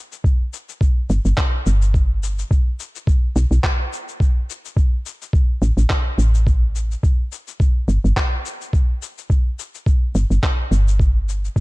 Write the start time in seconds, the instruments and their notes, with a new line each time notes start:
0.12 shaker
0.24 kick, shaker
0.53 shaker
0.69 shaker
0.81 kick, shaker
1.10 fm bass G1, shaker
1.25 fm bass G1, shaker
1.38 kick, clap, shaker
1.66 fm bass G1, shaker
1.82 shaker
1.94 kick, shaker
2.23 shaker
2.39 shaker
2.51 kick, shaker
2.80 shaker
2.96 shaker
3.07 kick, shaker
3.36 fm bass B1, shaker
3.51 fm bass B1, shaker
3.64 kick, clap, shaker
3.93 shaker
4.09 shaker
4.20 kick, shaker
4.50 shaker
4.65 shaker
4.77 kick, shaker
5.06 shaker
5.22 shaker
5.33 kick, shaker
5.62 fm bass A1, shaker
5.77 fm bass A1, shaker
5.90 kick, clap, shaker
6.18 fm bass A1, shaker
6.35 shaker
6.47 kick, shaker
6.76 shaker
6.91 shaker
7.03 kick, shaker
7.32 shaker
7.48 shaker
7.60 kick, shaker
7.88 fm bass G1, shaker
8.04 fm bass G1, shaker
8.17 kick, clap, shaker
8.46 shaker
8.61 shaker
8.73 kick, shaker
9.02 shaker
9.18 shaker
9.30 kick, shaker
9.59 shaker
9.75 shaker
9.86 kick, shaker
10.15 fm bass G1, shaker
10.30 fm bass G1, shaker
10.43 kick, clap, shaker
10.71 fm bass G1, shaker
10.88 shaker
10.99 kick, shaker
11.29 shaker
11.45 shaker
11.56 kick, shaker